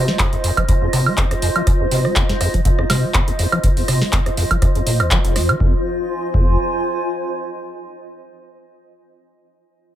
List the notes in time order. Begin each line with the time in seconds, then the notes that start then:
Already playing: F4 C5 D#5
0.08 G#3, snare
0.19 F2, kick, cross-stick, snare, clap, closed hi-hat
0.33 F2, closed hi-hat
0.44 F2, open hi-hat
0.57 F3, kick, cross-stick, closed hi-hat, high woodblock
0.69 F2, kick, closed hi-hat
0.82 F2
0.93 C3, cross-stick, open hi-hat
1.06 G#3, high woodblock
1.18 F2, kick, clap, closed hi-hat
1.31 F2, cross-stick, closed hi-hat
1.42 F2, open hi-hat
1.56 F3, closed hi-hat, high woodblock
1.67 F2, kick, cross-stick, closed hi-hat
1.80 F2
1.91 C3, open hi-hat
2.05 G#3, cross-stick
2.16 F2, kick, snare, clap, closed hi-hat
2.29 F2, snare, closed hi-hat
2.41 F2, cross-stick, open hi-hat
2.54 F3, kick, closed hi-hat
2.65 F2, kick, closed hi-hat
2.79 F2, cross-stick
2.90 C3, snare, open hi-hat, high woodblock
3.03 G#3
3.14 F2, kick, cross-stick, clap, closed hi-hat
3.28 F2, closed hi-hat
3.39 F2, open hi-hat
3.52 F3, cross-stick, closed hi-hat, high woodblock
3.64 F2, kick, closed hi-hat
3.77 F2, open hi-hat
3.88 C3, cross-stick, open hi-hat
4.02 G#3, snare
4.13 F2, kick, snare, clap, closed hi-hat
4.26 F2, cross-stick, closed hi-hat
4.37 F2, open hi-hat
4.51 F3, kick, closed hi-hat, high woodblock
4.62 F2, kick, cross-stick, closed hi-hat
4.75 F2, closed hi-hat
4.87 A#2, open hi-hat
5.00 D#2, cross-stick, closed hi-hat, high woodblock
5.11 F3, kick, clap, closed hi-hat
5.25 F1, closed hi-hat
5.36 F2, cross-stick, open hi-hat
5.49 F3, closed hi-hat, high woodblock
5.60 F1 F2 F4, kick
5.68 C5
5.76 G#5
6.34 F1 F2, kick